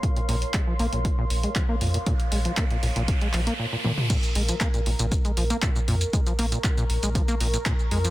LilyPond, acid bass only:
\new Staff \with { instrumentName = "Acid bass" } { \clef bass \time 4/4 \key bes \minor \tempo 4 = 118 bes,16 bes,16 bes,16 r16 aes16 f16 bes16 bes,16 bes,16 bes,16 r16 aes16 f16 bes16 bes,16 bes,16 | bes,16 r16 aes16 f16 bes16 bes,16 bes,16 bes,16 r16 aes16 f16 bes16 bes,16 bes,16 bes,16 r16 | bes,16 r16 aes16 f16 bes16 bes,16 bes,16 bes,16 r16 aes16 f16 bes16 bes,16 bes,16 bes,16 r16 | aes16 f16 bes16 bes,16 bes,16 bes,16 r16 aes16 f16 bes16 bes,16 bes,16 bes,16 r16 aes16 f16 | }